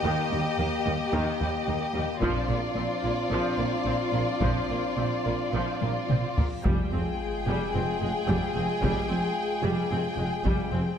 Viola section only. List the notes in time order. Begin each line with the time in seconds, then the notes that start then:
0.04 D#3
0.32 G3
0.59 A#3
0.86 G3
1.13 D#3
1.40 G3
1.68 A#3
1.95 G3
2.22 F3
2.50 A#3
2.77 C4
3.04 A#3
3.32 F3
3.58 A#3
3.87 C4
4.14 A#3
4.41 F3
4.70 A#3
4.98 C4
5.26 A#3
5.54 F3
5.81 A#3
6.09 C4
6.37 A#3
6.65 G3
6.93 C4
7.47 G3
7.74 C4
8.02 G#3
8.28 G3
8.55 C4
8.82 G3
9.09 C4
9.63 G3
9.91 C4
10.19 G#3
10.46 G3
10.72 C4